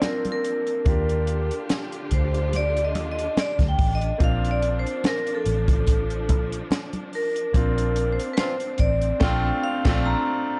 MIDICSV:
0, 0, Header, 1, 7, 480
1, 0, Start_track
1, 0, Key_signature, -2, "major"
1, 0, Tempo, 834492
1, 500, Time_signature, 4, 2, 24, 8
1, 6095, End_track
2, 0, Start_track
2, 0, Title_t, "Vibraphone"
2, 0, Program_c, 0, 11
2, 27, Note_on_c, 0, 70, 86
2, 97, Note_off_c, 0, 70, 0
2, 184, Note_on_c, 0, 70, 80
2, 879, Note_off_c, 0, 70, 0
2, 1229, Note_on_c, 0, 72, 82
2, 1472, Note_off_c, 0, 72, 0
2, 1475, Note_on_c, 0, 74, 98
2, 1633, Note_off_c, 0, 74, 0
2, 1637, Note_on_c, 0, 75, 80
2, 1779, Note_off_c, 0, 75, 0
2, 1791, Note_on_c, 0, 75, 89
2, 1951, Note_off_c, 0, 75, 0
2, 1953, Note_on_c, 0, 74, 98
2, 2023, Note_off_c, 0, 74, 0
2, 2120, Note_on_c, 0, 79, 96
2, 2272, Note_on_c, 0, 75, 99
2, 2275, Note_off_c, 0, 79, 0
2, 2432, Note_off_c, 0, 75, 0
2, 2438, Note_on_c, 0, 77, 97
2, 2594, Note_off_c, 0, 77, 0
2, 2594, Note_on_c, 0, 74, 94
2, 2663, Note_off_c, 0, 74, 0
2, 2757, Note_on_c, 0, 72, 84
2, 2914, Note_off_c, 0, 72, 0
2, 2920, Note_on_c, 0, 70, 87
2, 3075, Note_off_c, 0, 70, 0
2, 3076, Note_on_c, 0, 69, 82
2, 3765, Note_off_c, 0, 69, 0
2, 4114, Note_on_c, 0, 70, 85
2, 4673, Note_on_c, 0, 72, 75
2, 4684, Note_off_c, 0, 70, 0
2, 4726, Note_off_c, 0, 72, 0
2, 4794, Note_on_c, 0, 71, 64
2, 4819, Note_on_c, 0, 72, 94
2, 4826, Note_off_c, 0, 71, 0
2, 5060, Note_on_c, 0, 74, 93
2, 5067, Note_off_c, 0, 72, 0
2, 5297, Note_on_c, 0, 79, 101
2, 5307, Note_off_c, 0, 74, 0
2, 5542, Note_on_c, 0, 77, 103
2, 5545, Note_off_c, 0, 79, 0
2, 5784, Note_on_c, 0, 82, 99
2, 5788, Note_off_c, 0, 77, 0
2, 6095, Note_off_c, 0, 82, 0
2, 6095, End_track
3, 0, Start_track
3, 0, Title_t, "Grand piano"
3, 0, Program_c, 1, 0
3, 0, Control_c, 1, 64, 127
3, 19, Note_on_c, 1, 60, 52
3, 21, Note_on_c, 1, 62, 48
3, 23, Note_on_c, 1, 65, 45
3, 25, Note_on_c, 1, 72, 53
3, 483, Note_off_c, 1, 62, 0
3, 487, Note_on_c, 1, 58, 66
3, 488, Note_off_c, 1, 65, 0
3, 492, Note_on_c, 1, 62, 56
3, 497, Note_on_c, 1, 65, 59
3, 500, Note_off_c, 1, 60, 0
3, 503, Note_off_c, 1, 72, 0
3, 503, Note_on_c, 1, 67, 71
3, 507, Control_c, 1, 64, 0
3, 615, Control_c, 1, 64, 127
3, 2392, Note_off_c, 1, 58, 0
3, 2394, Note_off_c, 1, 62, 0
3, 2397, Note_off_c, 1, 65, 0
3, 2400, Note_off_c, 1, 67, 0
3, 2405, Note_on_c, 1, 58, 62
3, 2409, Note_on_c, 1, 60, 61
3, 2414, Note_on_c, 1, 62, 61
3, 2419, Note_on_c, 1, 65, 74
3, 2429, Control_c, 1, 64, 0
3, 2513, Control_c, 1, 64, 127
3, 4310, Note_off_c, 1, 58, 0
3, 4312, Note_off_c, 1, 60, 0
3, 4315, Note_off_c, 1, 62, 0
3, 4317, Note_off_c, 1, 65, 0
3, 4334, Note_on_c, 1, 58, 73
3, 4342, Note_on_c, 1, 60, 61
3, 4344, Note_on_c, 1, 62, 64
3, 4349, Control_c, 1, 64, 0
3, 4350, Note_on_c, 1, 65, 77
3, 4445, Control_c, 1, 64, 127
3, 5277, Note_off_c, 1, 58, 0
3, 5281, Note_off_c, 1, 60, 0
3, 5283, Note_off_c, 1, 62, 0
3, 5286, Note_off_c, 1, 65, 0
3, 5291, Note_on_c, 1, 57, 103
3, 5296, Note_on_c, 1, 60, 102
3, 5304, Note_on_c, 1, 62, 107
3, 5308, Note_on_c, 1, 65, 111
3, 5461, Note_off_c, 1, 57, 0
3, 5464, Note_off_c, 1, 60, 0
3, 5469, Note_off_c, 1, 62, 0
3, 5471, Note_off_c, 1, 65, 0
3, 5663, Note_on_c, 1, 57, 103
3, 5669, Note_on_c, 1, 60, 98
3, 5673, Note_on_c, 1, 62, 106
3, 5679, Note_on_c, 1, 65, 102
3, 5825, Note_off_c, 1, 57, 0
3, 5829, Note_off_c, 1, 60, 0
3, 5831, Note_off_c, 1, 62, 0
3, 5835, Note_off_c, 1, 65, 0
3, 6095, End_track
4, 0, Start_track
4, 0, Title_t, "Horn section"
4, 0, Program_c, 2, 61
4, 4820, Note_on_c, 2, 65, 84
4, 4821, Note_on_c, 2, 60, 73
4, 4822, Note_on_c, 2, 62, 77
4, 4912, Note_off_c, 2, 65, 0
4, 4913, Note_off_c, 2, 60, 0
4, 4914, Note_off_c, 2, 62, 0
4, 5297, Note_on_c, 2, 62, 96
4, 5298, Note_on_c, 2, 65, 93
4, 5299, Note_on_c, 2, 60, 89
4, 5423, Note_off_c, 2, 62, 0
4, 5424, Note_off_c, 2, 60, 0
4, 5424, Note_off_c, 2, 65, 0
4, 5670, Note_on_c, 2, 60, 90
4, 5672, Note_on_c, 2, 62, 95
4, 5672, Note_on_c, 2, 65, 95
4, 5790, Note_off_c, 2, 60, 0
4, 5791, Note_off_c, 2, 62, 0
4, 5791, Note_off_c, 2, 65, 0
4, 6095, End_track
5, 0, Start_track
5, 0, Title_t, "String section"
5, 0, Program_c, 3, 48
5, 0, Note_on_c, 3, 53, 71
5, 0, Note_on_c, 3, 58, 66
5, 0, Note_on_c, 3, 62, 84
5, 481, Note_off_c, 3, 53, 0
5, 482, Note_off_c, 3, 58, 0
5, 487, Note_on_c, 3, 65, 67
5, 489, Note_on_c, 3, 67, 81
5, 492, Note_on_c, 3, 50, 80
5, 2395, Note_off_c, 3, 65, 0
5, 2396, Note_off_c, 3, 67, 0
5, 2398, Note_off_c, 3, 50, 0
5, 2410, Note_on_c, 3, 53, 74
5, 4316, Note_off_c, 3, 53, 0
5, 4341, Note_on_c, 3, 60, 81
5, 6095, Note_off_c, 3, 60, 0
5, 6095, Note_off_c, 3, 62, 0
5, 6095, End_track
6, 0, Start_track
6, 0, Title_t, "Fingered electric bass"
6, 0, Program_c, 4, 33
6, 496, Note_on_c, 4, 39, 102
6, 859, Note_off_c, 4, 39, 0
6, 1216, Note_on_c, 4, 38, 78
6, 1697, Note_off_c, 4, 38, 0
6, 1697, Note_on_c, 4, 39, 89
6, 1880, Note_off_c, 4, 39, 0
6, 2066, Note_on_c, 4, 38, 81
6, 2151, Note_off_c, 4, 38, 0
6, 2181, Note_on_c, 4, 33, 87
6, 2362, Note_off_c, 4, 33, 0
6, 2422, Note_on_c, 4, 34, 95
6, 2783, Note_off_c, 4, 34, 0
6, 3141, Note_on_c, 4, 33, 89
6, 3622, Note_off_c, 4, 33, 0
6, 3622, Note_on_c, 4, 34, 95
6, 3802, Note_off_c, 4, 34, 0
6, 4339, Note_on_c, 4, 34, 94
6, 4701, Note_off_c, 4, 34, 0
6, 5060, Note_on_c, 4, 33, 89
6, 5240, Note_off_c, 4, 33, 0
6, 5299, Note_on_c, 4, 34, 99
6, 5466, Note_off_c, 4, 34, 0
6, 5669, Note_on_c, 4, 34, 120
6, 5829, Note_off_c, 4, 34, 0
6, 6095, End_track
7, 0, Start_track
7, 0, Title_t, "Drums"
7, 10, Note_on_c, 9, 38, 117
7, 11, Note_on_c, 9, 42, 95
7, 14, Note_on_c, 9, 63, 69
7, 67, Note_off_c, 9, 38, 0
7, 68, Note_off_c, 9, 42, 0
7, 72, Note_off_c, 9, 63, 0
7, 142, Note_on_c, 9, 42, 51
7, 146, Note_on_c, 9, 63, 68
7, 200, Note_off_c, 9, 42, 0
7, 203, Note_off_c, 9, 63, 0
7, 256, Note_on_c, 9, 42, 66
7, 313, Note_off_c, 9, 42, 0
7, 384, Note_on_c, 9, 42, 47
7, 441, Note_off_c, 9, 42, 0
7, 492, Note_on_c, 9, 42, 77
7, 494, Note_on_c, 9, 36, 112
7, 550, Note_off_c, 9, 42, 0
7, 552, Note_off_c, 9, 36, 0
7, 629, Note_on_c, 9, 42, 50
7, 686, Note_off_c, 9, 42, 0
7, 732, Note_on_c, 9, 42, 74
7, 789, Note_off_c, 9, 42, 0
7, 868, Note_on_c, 9, 42, 56
7, 926, Note_off_c, 9, 42, 0
7, 975, Note_on_c, 9, 42, 80
7, 978, Note_on_c, 9, 38, 101
7, 980, Note_on_c, 9, 63, 71
7, 1032, Note_off_c, 9, 42, 0
7, 1036, Note_off_c, 9, 38, 0
7, 1038, Note_off_c, 9, 63, 0
7, 1107, Note_on_c, 9, 42, 51
7, 1164, Note_off_c, 9, 42, 0
7, 1213, Note_on_c, 9, 42, 70
7, 1218, Note_on_c, 9, 36, 84
7, 1271, Note_off_c, 9, 42, 0
7, 1275, Note_off_c, 9, 36, 0
7, 1348, Note_on_c, 9, 42, 53
7, 1406, Note_off_c, 9, 42, 0
7, 1456, Note_on_c, 9, 42, 93
7, 1457, Note_on_c, 9, 62, 46
7, 1513, Note_off_c, 9, 42, 0
7, 1515, Note_off_c, 9, 62, 0
7, 1591, Note_on_c, 9, 42, 46
7, 1649, Note_off_c, 9, 42, 0
7, 1697, Note_on_c, 9, 62, 53
7, 1698, Note_on_c, 9, 42, 70
7, 1755, Note_off_c, 9, 62, 0
7, 1756, Note_off_c, 9, 42, 0
7, 1833, Note_on_c, 9, 42, 59
7, 1890, Note_off_c, 9, 42, 0
7, 1938, Note_on_c, 9, 63, 69
7, 1941, Note_on_c, 9, 38, 117
7, 1942, Note_on_c, 9, 42, 97
7, 1996, Note_off_c, 9, 63, 0
7, 1998, Note_off_c, 9, 38, 0
7, 1999, Note_off_c, 9, 42, 0
7, 2065, Note_on_c, 9, 36, 91
7, 2065, Note_on_c, 9, 42, 53
7, 2071, Note_on_c, 9, 38, 35
7, 2072, Note_on_c, 9, 63, 69
7, 2122, Note_off_c, 9, 36, 0
7, 2123, Note_off_c, 9, 42, 0
7, 2128, Note_off_c, 9, 38, 0
7, 2130, Note_off_c, 9, 63, 0
7, 2178, Note_on_c, 9, 46, 50
7, 2179, Note_on_c, 9, 36, 99
7, 2235, Note_off_c, 9, 46, 0
7, 2236, Note_off_c, 9, 36, 0
7, 2309, Note_on_c, 9, 42, 53
7, 2366, Note_off_c, 9, 42, 0
7, 2418, Note_on_c, 9, 36, 121
7, 2418, Note_on_c, 9, 42, 85
7, 2475, Note_off_c, 9, 42, 0
7, 2476, Note_off_c, 9, 36, 0
7, 2557, Note_on_c, 9, 42, 53
7, 2614, Note_off_c, 9, 42, 0
7, 2660, Note_on_c, 9, 42, 70
7, 2717, Note_off_c, 9, 42, 0
7, 2798, Note_on_c, 9, 42, 55
7, 2856, Note_off_c, 9, 42, 0
7, 2899, Note_on_c, 9, 63, 70
7, 2901, Note_on_c, 9, 42, 76
7, 2905, Note_on_c, 9, 38, 121
7, 2957, Note_off_c, 9, 63, 0
7, 2959, Note_off_c, 9, 42, 0
7, 2962, Note_off_c, 9, 38, 0
7, 3029, Note_on_c, 9, 42, 51
7, 3087, Note_off_c, 9, 42, 0
7, 3138, Note_on_c, 9, 42, 68
7, 3195, Note_off_c, 9, 42, 0
7, 3267, Note_on_c, 9, 64, 73
7, 3268, Note_on_c, 9, 36, 94
7, 3272, Note_on_c, 9, 42, 54
7, 3325, Note_off_c, 9, 36, 0
7, 3325, Note_off_c, 9, 64, 0
7, 3330, Note_off_c, 9, 42, 0
7, 3374, Note_on_c, 9, 62, 45
7, 3378, Note_on_c, 9, 42, 93
7, 3381, Note_on_c, 9, 36, 82
7, 3432, Note_off_c, 9, 62, 0
7, 3435, Note_off_c, 9, 42, 0
7, 3438, Note_off_c, 9, 36, 0
7, 3510, Note_on_c, 9, 42, 47
7, 3567, Note_off_c, 9, 42, 0
7, 3618, Note_on_c, 9, 62, 54
7, 3618, Note_on_c, 9, 64, 73
7, 3620, Note_on_c, 9, 42, 69
7, 3621, Note_on_c, 9, 36, 87
7, 3676, Note_off_c, 9, 62, 0
7, 3676, Note_off_c, 9, 64, 0
7, 3678, Note_off_c, 9, 36, 0
7, 3678, Note_off_c, 9, 42, 0
7, 3753, Note_on_c, 9, 42, 59
7, 3810, Note_off_c, 9, 42, 0
7, 3858, Note_on_c, 9, 63, 74
7, 3864, Note_on_c, 9, 38, 119
7, 3865, Note_on_c, 9, 42, 99
7, 3915, Note_off_c, 9, 63, 0
7, 3921, Note_off_c, 9, 38, 0
7, 3922, Note_off_c, 9, 42, 0
7, 3986, Note_on_c, 9, 42, 52
7, 3989, Note_on_c, 9, 63, 67
7, 4043, Note_off_c, 9, 42, 0
7, 4046, Note_off_c, 9, 63, 0
7, 4100, Note_on_c, 9, 46, 50
7, 4158, Note_off_c, 9, 46, 0
7, 4233, Note_on_c, 9, 42, 52
7, 4290, Note_off_c, 9, 42, 0
7, 4339, Note_on_c, 9, 36, 117
7, 4341, Note_on_c, 9, 42, 84
7, 4397, Note_off_c, 9, 36, 0
7, 4398, Note_off_c, 9, 42, 0
7, 4475, Note_on_c, 9, 42, 55
7, 4532, Note_off_c, 9, 42, 0
7, 4578, Note_on_c, 9, 42, 79
7, 4636, Note_off_c, 9, 42, 0
7, 4714, Note_on_c, 9, 42, 60
7, 4771, Note_off_c, 9, 42, 0
7, 4814, Note_on_c, 9, 42, 79
7, 4818, Note_on_c, 9, 38, 112
7, 4819, Note_on_c, 9, 63, 74
7, 4872, Note_off_c, 9, 42, 0
7, 4875, Note_off_c, 9, 38, 0
7, 4876, Note_off_c, 9, 63, 0
7, 4946, Note_on_c, 9, 42, 54
7, 5004, Note_off_c, 9, 42, 0
7, 5049, Note_on_c, 9, 42, 72
7, 5058, Note_on_c, 9, 36, 83
7, 5107, Note_off_c, 9, 42, 0
7, 5115, Note_off_c, 9, 36, 0
7, 5186, Note_on_c, 9, 42, 54
7, 5243, Note_off_c, 9, 42, 0
7, 5294, Note_on_c, 9, 49, 79
7, 5297, Note_on_c, 9, 38, 106
7, 5298, Note_on_c, 9, 36, 112
7, 5352, Note_off_c, 9, 49, 0
7, 5354, Note_off_c, 9, 38, 0
7, 5355, Note_off_c, 9, 36, 0
7, 5665, Note_on_c, 9, 49, 84
7, 5667, Note_on_c, 9, 38, 109
7, 5668, Note_on_c, 9, 36, 113
7, 5722, Note_off_c, 9, 49, 0
7, 5725, Note_off_c, 9, 36, 0
7, 5725, Note_off_c, 9, 38, 0
7, 6095, End_track
0, 0, End_of_file